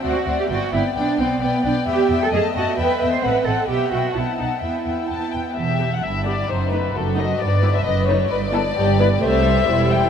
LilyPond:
<<
  \new Staff \with { instrumentName = "Violin section" } { \time 2/4 \key g \major \tempo 4 = 131 fis''8 fis''8 g''8 g''8 | g''8 g''8 g''8 g''8 | \key e \minor g''8 g''8 a''8 a''8 | g''8 g''8 fis''8 fis''8 |
g''8 g''8 a''8 a''8 | g''8 g''8 g''8 g''8 | e''8. fis''16 e''8 d''8 | c''8 b'8 a'8 dis''8 |
d''8. e''16 dis''8 cis''8 | b'8 a'8 g'8 b'8 | \key c \lydian e''4. g''8 | }
  \new Staff \with { instrumentName = "Violin section" } { \time 2/4 \key g \major d''8 d''8 d''8 d''8 | d''8 d''8 d''8 d''8 | \key e \minor e''8 e''8 dis''8 dis''8 | e''8 e''8 fis''8 fis''8 |
e''8 e''8 fis''8 fis''8 | e''8 e''8 a''8 g''8 | g'4 e'4 | dis'4 fis'4 |
b'2 | d''2 | \key c \lydian c''2 | }
  \new Staff \with { instrumentName = "Cello section" } { \time 2/4 \key g \major fis'8. g'16 fis'8 e'8 | d'8 c'8 b8 d'8 | \key e \minor g'8. a'16 gis'8 fis'8 | b'8. c''16 b'8 a'8 |
g'8 fis'8 e'8 dis'8 | e'4. r8 | e,4 g,4 | fis,4 fis,4 |
g,4 fis,4 | g,4 g,4 | \key c \lydian c,4 e,4 | }
  \new Staff \with { instrumentName = "Viola section" } { \time 2/4 \key g \major << { r2 | r2 | \key e \minor r2 | r2 |
r2 | r2 | r8 g'8 r8 g'8 | r8 dis'8 r8 dis'8 |
r8 e'8 r8 dis'8 | r8 e'8 r8 e'8 | \key c \lydian g'4 e'4 | } \\ { c'8 c'8 b8 b8 | b8 b8 b8 b8 | b8 b8 a8 a8 | b8 b8 c'8 c'8 |
b8 b8 b8 b8 | b8 b8 b8 b8 | r8 b8 r8 b8 | r8 a8 r8 a8 |
r8 g8 r8 a8 | r8 b8 r8 b8 | a8 g8 g4 | } >> }
  \new Staff \with { instrumentName = "Double bass section" } { \clef bass \time 2/4 \key g \major d,8 d,8 g,,8 g,,8 | b,,8 b,,8 b,,8 b,,8 | \key e \minor e,8 e,8 fis,8 fis,8 | e,8 e,8 a,,8 a,,8 |
b,,8 b,,8 b,,8 b,,8 | e,8 e,8 e,8 e,8 | e,,4 g,,4 | fis,,4 fis,,4 |
g,,4 fis,,4 | g,,4 g,,4 | \key c \lydian c,4 e,,4 | }
>>